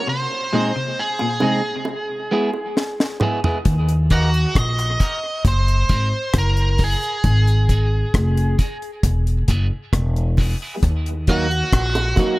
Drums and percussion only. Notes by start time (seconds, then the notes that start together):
1.19 high bongo
1.40 high bongo, low bongo
1.85 high bongo
2.54 high bongo
2.77 snare
3.00 snare
3.20 mid tom, high bongo, low bongo
3.44 floor tom
3.65 kick, closed hi-hat
3.89 closed hi-hat
4.10 kick, closed hi-hat
4.34 closed hi-hat
4.55 kick, cross-stick, closed hi-hat
4.78 closed hi-hat, high bongo
5.00 kick, closed hi-hat, high bongo
5.45 kick, closed hi-hat, high bongo
5.68 closed hi-hat
5.89 kick, closed hi-hat
6.34 kick, cross-stick, closed hi-hat
6.57 closed hi-hat
6.78 kick, open hi-hat, high bongo, low bongo
7.03 closed hi-hat
7.24 kick, closed hi-hat
7.47 closed hi-hat
7.69 kick, closed hi-hat
8.14 kick, cross-stick, closed hi-hat
8.37 closed hi-hat, high bongo
8.59 kick, closed hi-hat, high bongo
8.82 closed hi-hat
9.03 kick, closed hi-hat, high bongo
9.27 closed hi-hat
9.48 kick, closed hi-hat
9.93 kick, cross-stick, closed hi-hat
10.16 closed hi-hat
10.37 kick, open hi-hat, high bongo, low bongo
10.83 kick, closed hi-hat
11.06 closed hi-hat
11.27 kick, closed hi-hat
11.51 closed hi-hat
11.73 kick, cross-stick, closed hi-hat
11.95 closed hi-hat, high bongo
12.16 kick, closed hi-hat, high bongo